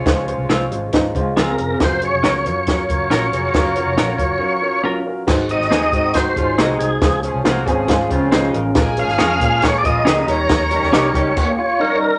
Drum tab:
CC |----------------|----------------|----------------|x---------------|
HH |x-x-x-x-x-x-x-x-|x-x-x-x-x-x-x-x-|x-x-x-x---------|--x-x-x-x-x-x-x-|
SD |o---o---o---o---|o---o---o---o---|o---o-----------|o--oo---o---o---|
BD |o-------o-o-----|o-------o-o-----|o-----o---------|o-----o-o-o-----|

CC |----------------|----------------|--------x-------|
HH |x-x-x-x-x-x-x-x-|x-x-x-x-x-x-x-x-|x-x-x-x---------|
SD |o---o---o---o---|o--oo---o---o---|o--oo-----------|
BD |o-----o-o-o-----|o-----o-o-o-----|o-----o-o-------|